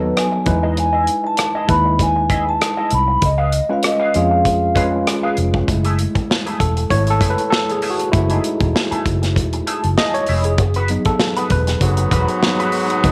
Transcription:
Already playing: D#2 F#3 B3 D#4 A4 B4
0.01 muted clean electric guitar stroke
0.16 G#5, muted clean electric guitar stroke, cross-stick, closed hi-hat
0.32 muted clean electric guitar stroke
0.45 E2 F#3 D#4 E4 B4, kick, closed hi-hat
0.52 G#3
0.63 E4 G#4 D#5
0.77 G#5, muted clean electric guitar stroke, closed hi-hat
0.93 E4 G#4 D#5
1.07 muted clean electric guitar stroke, closed hi-hat
1.24 A5, muted clean electric guitar stroke
1.37 muted clean electric guitar stroke, cross-stick, closed hi-hat
1.55 E4 G#4 D#5
1.68 D#2 G#3 D#4 E4 B4 B5, muted clean electric guitar stroke, kick, closed hi-hat
1.86 muted clean electric guitar stroke
1.99 G#5, muted clean electric guitar stroke, kick, closed hi-hat
2.16 muted clean electric guitar stroke
2.30 E4 G#4 D#5, kick, closed hi-hat
2.47 A5, muted clean electric guitar stroke
2.61 muted clean electric guitar stroke, cross-stick, closed hi-hat
2.77 E4 G#4 D#5
2.90 C2 B5, muted clean electric guitar stroke, closed hi-hat
3.08 muted clean electric guitar stroke
3.22 C#2 D#5, muted clean electric guitar stroke, kick, closed hi-hat
3.38 G#4 B4 F5
3.52 muted clean electric guitar stroke, closed hi-hat
3.69 G#3 C#4 F4 B4 F5, muted clean electric guitar stroke
3.83 D#5, muted clean electric guitar stroke, cross-stick, closed hi-hat
3.99 G#4 B4 F5
4.14 F2 G#3 C#4 F4 G#4 F5, muted clean electric guitar stroke, closed hi-hat
4.31 muted clean electric guitar stroke
4.45 muted clean electric guitar stroke, kick, closed hi-hat
4.75 G#3 C#4 F4 G#4 B4 F5, kick, closed hi-hat
4.93 muted clean electric guitar stroke
5.07 muted clean electric guitar stroke, cross-stick, closed hi-hat
5.23 G#4 B4 F5
5.37 F1, muted clean electric guitar stroke, closed hi-hat
5.54 muted clean electric guitar stroke, kick
5.67 F#1 G#3 A3 E4, muted clean electric guitar stroke, kick, closed hi-hat
5.85 A3 E4 G#4, closed hi-hat
5.99 muted clean electric guitar stroke, closed hi-hat
6.15 muted clean electric guitar stroke, muted fingered electric bass stroke, kick, closed hi-hat
6.30 muted clean electric guitar stroke, snare
6.46 A3 E4 G#4, closed hi-hat
6.60 E1 A4, muted clean electric guitar stroke, kick, closed hi-hat
6.77 muted clean electric guitar stroke, closed hi-hat
6.90 G#1 G#3 A3 E4 C#5, muted clean electric guitar stroke, kick, closed hi-hat
7.07 A4, muted clean electric guitar stroke, closed hi-hat
7.21 F#1 A3 E4 G#4, kick, closed hi-hat
7.30 B4
7.38 muted clean electric guitar stroke, closed hi-hat
7.50 A4, muted clean electric guitar stroke, snare
7.69 G#4, muted clean electric guitar stroke, closed hi-hat
7.82 A3 E4 G#4, open hi-hat
7.90 F#4
7.99 muted clean electric guitar stroke, closed hi-hat
8.12 F#1 G#3 A3 E4, muted clean electric guitar stroke, kick, closed hi-hat
8.30 A3 D#4 E4 G#4, closed hi-hat
8.44 muted clean electric guitar stroke, closed hi-hat
8.61 E1, muted clean electric guitar stroke, kick, closed hi-hat
8.75 muted clean electric guitar stroke, snare
8.91 A3 E4 G#4, muted fingered electric bass stroke, closed hi-hat
9.05 F#1, muted clean electric guitar stroke, kick, closed hi-hat
9.22 muted clean electric guitar stroke, snare, closed hi-hat
9.36 E1, muted clean electric guitar stroke, kick, closed hi-hat
9.53 muted clean electric guitar stroke, closed hi-hat
9.67 A3 E4 G#4, closed hi-hat
9.84 F#1, muted clean electric guitar stroke, closed hi-hat
9.97 A3 E4 G#4 D#5, snare
10.14 C#5, muted clean electric guitar stroke, closed hi-hat
10.26 F1 A3 E4 G#4, open hi-hat
10.44 G#4, muted clean electric guitar stroke, closed hi-hat
10.58 F#1, muted clean electric guitar stroke, kick, closed hi-hat
10.74 D#4 F#4 B4, closed hi-hat
10.88 F#3 B3 D#4, muted clean electric guitar stroke, closed hi-hat
11.05 A4, muted clean electric guitar stroke, muted fingered electric bass stroke, kick, closed hi-hat
11.20 muted clean electric guitar stroke, snare
11.37 D#4 F#4 B4, closed hi-hat
11.50 E1 B4, muted clean electric guitar stroke, kick, closed hi-hat
11.67 muted clean electric guitar stroke, snare, closed hi-hat
11.81 F#1 G#2 F#3 B3, muted clean electric guitar stroke, kick, closed hi-hat
11.97 muted clean electric guitar stroke, closed hi-hat
12.11 E1 D#4 F#4 B4, kick, closed hi-hat
12.28 muted clean electric guitar stroke, closed hi-hat
12.42 F#3 B3 D#4, muted clean electric guitar stroke, snare
12.60 D#4 F#4 B4, closed hi-hat
12.72 muted clean electric guitar stroke, open hi-hat
12.90 muted clean electric guitar stroke, closed hi-hat
13.02 F#1 F#3 B3 D#4, muted clean electric guitar stroke, kick, closed hi-hat

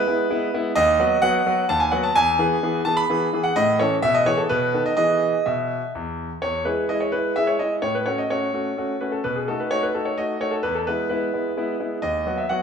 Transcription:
Already playing: B4
0.07 G#3 B3 E4
0.30 G#3 B3 E4
0.53 G#3 B3 E4
0.75 D#2 D#5
0.99 F#3 B3 F#4
1.22 F#3 B3 F#4 F#5
1.46 F#3 B3 F#4
1.69 D#2 A5
1.80 G#5
1.91 F#3 B3 F#4 F#5
2.03 A5
2.15 E2 G#5
2.39 E3 B3 G#4
2.63 E3 B3 G#4
2.85 E3 B3 G#4 A5
2.97 B5
3.10 E3 B3 G#4
3.33 E3 B3 G#4
3.43 F#5
3.56 A2 D#5
3.79 E3 C#4 A4 C#5
4.02 B2 E5
4.14 D#5
4.26 E3 B3 G#4 C#5
4.38 A4
4.49 B2 B4
4.74 D#3 B3 A4
4.86 D#5
4.97 E3 B3 G#4 D#5
5.46 B2 E5
5.95 E2
6.42 E2 C#5
6.65 G#3 E4 G#4 B4
6.89 G#3 E4 G#4 D#5
7.00 C#5
7.12 G#3 E4 G#4 B4
7.36 G#3 E4 G#4 E5
7.47 C#5
7.59 G#3 E4 G#4 D#5
7.82 A2 C#5
7.95 B4
8.06 A3 C#4 F#4 C#5
8.18 D#5
8.30 A3 C#4 F#4 C#5
8.53 A3 C#4 F#4
8.77 A3 C#4 F#4
9.01 A3 C#4 F#4 B4
9.12 A4
9.24 B2 B4
9.35 G#4
9.48 A3 D#4 F#4 A4
9.60 B4
9.71 A3 D#4 F#4 C#5
9.83 B4
9.94 A3 D#4 F#4 A4
10.05 C#5
10.18 A3 D#4 F#4 D#5
10.41 A3 D#4 F#4 C#5
10.51 A4
10.63 E2 B4
10.75 A4
10.87 G#3 B3 E4 B4
11.09 G#3 B3 E4 B4
11.33 G#3 B3 E4
11.57 G#3 B3 E4
11.80 G#3 B3 E4
12.02 D#2 D#5
12.26 F#3 B3 F#4
12.38 E5
12.49 F#3 B3 F#4 F#5

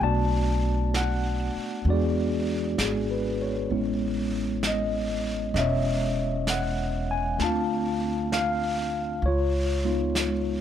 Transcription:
0.00 B1 A3 B3 D4 D5 A5, brush sweep
0.05 F#4
0.94 F#5, brush sweep, snare, hi-hat pedal
1.85 E2 G#3 B3 D4 F#4, brush sweep
1.90 G#4 D5
2.78 G#1 G#4, brush sweep, snare, hi-hat pedal
3.11 B4
3.42 C#5
3.70 A1 G#3 B3 C#4 E4, brush sweep
4.63 brush sweep, snare, hi-hat pedal
4.67 D#5
5.54 E1 C#4 D#5, brush sweep, snare
5.58 C#5 E5
6.47 F#5, brush sweep, snare, hi-hat pedal
7.11 G#5
7.38 D2 A3 C4 D4 A5, brush sweep, snare
7.43 F4 F5
8.32 F5, brush sweep, snare, hi-hat pedal
9.22 C#2 C#5, brush sweep
9.28 F4
9.85 G#3 B3 D#4 F4
10.15 brush sweep, snare, hi-hat pedal

